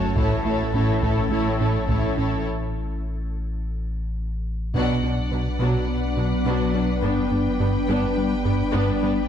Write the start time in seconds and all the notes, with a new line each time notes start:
Already playing: F#1 A3 C#4 F#4 A4 C#5
0.16 A1 A2 A3 C#4 E4 A4 C#5, taiko
0.45 A3 E4 A4 C#5
0.74 A1 A2 A3 C#4 E4 A4 C#5
1.02 A2 A3 E4 A4 C#5, taiko
1.31 A1 A2 A3 E4 A4 C#5
1.60 A2 A3 C#4 E4 A4 C#5
1.88 A1 A2 A3 E4 A4 C#5, taiko
2.18 A2 A3 C#4 E4 A4 C#5
4.73 B1 B2 F#3 B3 D4 B4 D5 F#5, taiko
5.03 B1 B2 F#3 D4
5.31 B1 B2 F#3 D4 B4
5.59 B1 B2 F#3 B3 D4
5.88 B3
6.17 B1 B2 F#3 D4 B4
6.45 B1 B2 F#3 B3 D4
6.73 B1 B2 F#3 B3 D4 F#4
7.02 G1 G2 G3 B3 D4 B4 G5
7.31 G1 G2 B3 D4
7.59 G1 G2 B3 D4 G4
7.88 G1 G2 G3 B3 D4
8.17 G3
8.45 G1 G2 B3 D4 G4
8.74 G1 G2 G3 B3 D4
9.03 G1 G2 G3 B3 D4